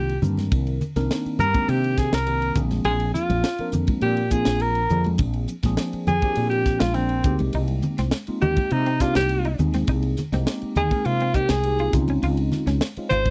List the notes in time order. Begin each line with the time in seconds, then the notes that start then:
Already playing: C2 D#3 A#3 C4 D4 F4 G4
0.09 ride
0.22 G2 D#3 A#3 C4 D4 A#4, hi-hat pedal, low conga
0.37 snare, ride, high conga
0.52 C2, kick, ride
0.67 ride
0.81 hi-hat pedal, low conga
0.96 C2 D#3 A#3 C4 D4 A#4, snare, ride, high conga
1.11 snare, ride
1.26 muted fretless electric bass stroke, ride
1.39 G2 A#4, hi-hat pedal, low conga
1.53 D#3 A#3 C4 D4 G4, kick, ride, high conga
1.68 C3 G4, ride
1.84 ride
1.98 G#4, kick, snare, hi-hat pedal
2.13 C2 A#4, snare, ride
2.26 D#3 A#3 C4 D4 G4, ride
2.42 ride
2.56 A#1 F3 A#3 C4 D4 G#4, kick, hi-hat pedal, low conga
2.71 snare, ride, high conga
2.84 A#1 G#4, ride
3.00 ride
3.14 F4, hi-hat pedal, low conga
3.29 A#1, ride, high conga
3.44 snare, ride
3.58 F3 A#3 C4 D4 A#4, muted fretless electric bass stroke, ride
3.72 F2, hi-hat pedal, low conga
3.87 kick, ride, high conga
4.01 A#2 G4, ride
4.17 ride
4.31 F3 A#3 C4 D4 F4 G#4, kick, hi-hat pedal
4.45 A#1, snare, ride
4.60 A#4, ride
4.75 ride
4.89 F2 F3 A#3 C4 D4 G#4, hi-hat pedal, low conga
5.04 ride, high conga
5.18 A#1, kick, ride, low conga
5.33 ride
5.48 hi-hat pedal
5.63 A#1 F3 A#3 C4 D4 G#4, kick, snare, ride, high conga
5.77 snare, ride
5.93 muted fretless electric bass stroke, ride
6.07 F2 G#4, hi-hat pedal, high conga, low conga
6.22 F3 A#3 C4 D4 G4, kick, ride, high conga
6.35 A#2, ride
6.50 G4, ride
6.65 kick, snare, hi-hat pedal
6.79 A#1 F4, snare, ride, high conga
6.94 F3 A#3 C4 D4 A#4, snare, ride
7.09 ride
7.23 D2 G#3 A#3 C4 D#4 G4, kick, hi-hat pedal, low conga
7.39 C2, ride, high conga
7.53 C2 D#4, ride
7.68 ride
7.82 hi-hat pedal, low conga
7.98 C2 C4, snare, ride, high conga
8.11 snare, ride
8.27 G#3 A#3 C4 D#4 F4, muted fretless electric bass stroke, ride
8.41 D#2 D#4 G4, hi-hat pedal, low conga
8.56 kick, ride, high conga
8.71 C3 D#4, ride
8.86 C4, ride
9.00 G#3 A#3 C4 D4 D#4 F4 G4, kick, snare, hi-hat pedal
9.15 C2 G4, snare, ride, high conga
9.29 ride
9.45 D#4, ride
9.58 D#2 G#3 A#3 C4 D#4 G#4, hi-hat pedal, low conga
9.73 C4, snare, ride, high conga
9.87 C2 D#4, kick, ride
10.03 ride
10.17 snare, hi-hat pedal, low conga
10.32 C2 G#3 A#3 C4 D#4 G4, snare, ride, high conga
10.47 snare, ride
10.62 muted fretless electric bass stroke, ride
10.75 D#2 D#4 G#4, hi-hat pedal, low conga
10.91 G#3 A#3 C4 D#4 A#4, kick, ride, high conga
11.05 C3 F4, ride
11.20 C4, ride
11.34 D#4 G4, kick, hi-hat pedal
11.49 C2 G#4, snare, ride, high conga
11.63 G#3 A#3 C4 D#4 G4, ride
11.79 F4, ride
11.93 C#2 G#3 C4 C#4 D#4 F4, kick, hi-hat pedal, low conga
12.08 C#4, ride, high conga
12.23 C#2 F4, ride
12.37 ride
12.52 snare, hi-hat pedal, low conga
12.67 C#2 C#4, snare, ride, high conga
12.81 snare, ride
12.97 G#3 C4 C#4 D#4 F4, muted fretless electric bass stroke, ride
13.10 G#1 F4 C5, hi-hat pedal, low conga
13.25 kick, ride, high conga